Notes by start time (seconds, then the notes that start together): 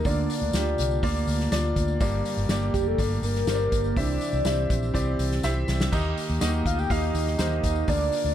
0.05 D2 D3 A#3 D4 F4 D5, kick, hi-hat pedal, open hi-hat, tambourine
0.30 hi-hat pedal, open hi-hat, tambourine
0.42 D2
0.53 D2 A#3 D4 F4 G4, snare, hi-hat pedal, open hi-hat, tambourine
0.78 C2, hi-hat pedal, open hi-hat, tambourine
0.91 tambourine
1.03 D2 A#3 D4 F4 D5, kick, hi-hat pedal, open hi-hat, tambourine
1.27 D2, hi-hat pedal, open hi-hat, tambourine
1.40 snare
1.52 D2 A#3 D4 F4 D5, snare, hi-hat pedal, open hi-hat, tambourine
1.76 D2, kick, hi-hat pedal, open hi-hat, tambourine
1.88 tambourine
2.00 G1 G2 A#3 D4 G4 D5, kick, hi-hat pedal, open hi-hat, tambourine
2.25 hi-hat pedal, open hi-hat, tambourine
2.37 G1, tambourine
2.49 G1 A#3 D4 G4 D5, snare, hi-hat pedal, open hi-hat, tambourine
2.74 F1 G4, kick, hi-hat pedal, open hi-hat, tambourine
2.87 A4
2.98 G1 A#3 D4 G4 D5, kick, hi-hat pedal, open hi-hat, tambourine
3.22 G1 A#4, hi-hat pedal, open hi-hat, tambourine
3.36 snare
3.47 G1 A#3 D4 G4 C5, snare, hi-hat pedal, open hi-hat, tambourine
3.54 D5
3.72 G1, kick, hi-hat pedal, open hi-hat, tambourine
3.84 tambourine
3.96 C2 C3 E3 C4 E4 G4 D5 E5, kick, hi-hat pedal, open hi-hat, tambourine
4.21 hi-hat pedal, open hi-hat, tambourine
4.33 C2, tambourine
4.45 C2 C4 E4 G4 E5, snare, hi-hat pedal, open hi-hat, tambourine
4.70 A#1, kick, hi-hat pedal, open hi-hat, tambourine
4.83 tambourine
4.94 C2 C4 E4 G4 D5, kick, hi-hat pedal, open hi-hat, tambourine
5.19 C2, hi-hat pedal, open hi-hat, tambourine
5.31 snare
5.43 C2 C4 E4 G4 E5, snare, tambourine
5.68 C2, snare, tambourine
5.80 snare, tambourine
5.92 D#2 D#3 A#3 D#4 G4 D#5, kick, tambourine, crash
6.17 hi-hat pedal, open hi-hat, tambourine
6.29 D#2, tambourine
6.41 D#2 A#3 D#4 F#4 D#5, snare, hi-hat pedal, open hi-hat, tambourine
6.47 G4
6.66 D2 F5, kick, hi-hat pedal, open hi-hat, tambourine
6.79 G5, tambourine
6.90 D#2 A#3 D#4 G4 D#5 F5, kick, hi-hat pedal, open hi-hat, tambourine
7.14 D#2, hi-hat pedal, open hi-hat, tambourine
7.27 snare
7.38 D#2 A#3 D#4 G4 C5 D#5, snare, hi-hat pedal, open hi-hat, tambourine
7.63 D#2, kick, hi-hat pedal, open hi-hat, tambourine
7.75 tambourine
7.88 D2 D3 A#3 D4 F4 D5, kick, hi-hat pedal, open hi-hat, tambourine
8.12 hi-hat pedal, open hi-hat, tambourine
8.24 D2, tambourine